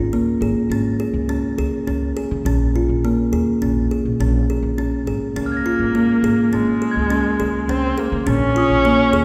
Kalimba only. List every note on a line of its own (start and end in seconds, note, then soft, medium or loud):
0.13 0.31 A#3 medium
0.42 0.60 G#4 medium
0.72 0.89 C#4 medium
1.00 1.18 G#4 medium
1.29 1.47 C#4 medium
1.58 1.76 G#4 medium
1.87 2.05 C#4 medium
2.17 2.34 G#4 medium
2.46 2.64 C#4 medium
2.76 2.93 F4 medium
3.05 3.22 A#3 medium
3.33 3.51 G#4 medium
3.62 3.80 C#4 medium
3.91 4.09 G#4 medium
4.21 4.38 C#4 medium
4.50 4.68 G#4 medium
4.78 4.96 C#4 medium
5.07 5.25 G#4 medium
5.36 5.54 C#4 medium
5.66 5.84 F4 medium
5.95 6.13 A#3 medium
6.24 6.42 G#4 medium
6.53 6.71 C#4 medium
6.82 7.00 G#4 medium
7.10 7.29 C#4 medium
7.40 7.58 G#4 medium
7.69 7.87 C#4 medium
7.98 8.16 G#4 medium
8.27 8.45 C#4 medium
8.56 8.74 F4 medium
8.85 9.03 A#3 medium
9.13 9.25 G#4 medium